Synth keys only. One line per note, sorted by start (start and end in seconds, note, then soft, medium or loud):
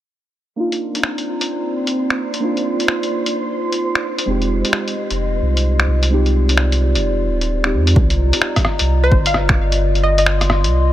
0.56 0.90 A#3 medium
0.56 0.92 D4 medium
0.56 0.92 D#4 medium
0.56 0.93 F4 medium
0.92 2.38 A#3 medium
0.92 2.40 D4 medium
0.97 2.41 D#4 medium
0.97 2.43 F4 medium
2.40 2.75 A#3 medium
2.40 2.76 D4 medium
2.40 2.77 D#4 medium
2.40 2.77 F4 medium
2.76 4.23 A#3 medium
2.76 4.24 D4 medium
2.81 4.26 D#4 medium
2.81 4.27 F4 medium
4.26 4.60 G#3 medium
4.26 4.61 C4 medium
4.26 4.62 D#4 medium
4.30 4.63 G4 medium
4.61 6.08 G#3 medium
4.61 6.09 C4 medium
4.67 6.11 D#4 medium
4.67 6.12 G4 medium
6.10 6.44 G#3 medium
6.10 6.46 C4 medium
6.10 6.46 D#4 medium
6.10 6.47 G4 loud
6.45 7.60 G#3 medium
6.45 7.61 C4 medium
6.50 7.62 D#4 medium
6.50 7.64 G4 medium
7.63 7.93 G#3 medium
7.63 7.94 C4 medium
7.63 7.95 D#4 medium
7.67 7.95 G4 medium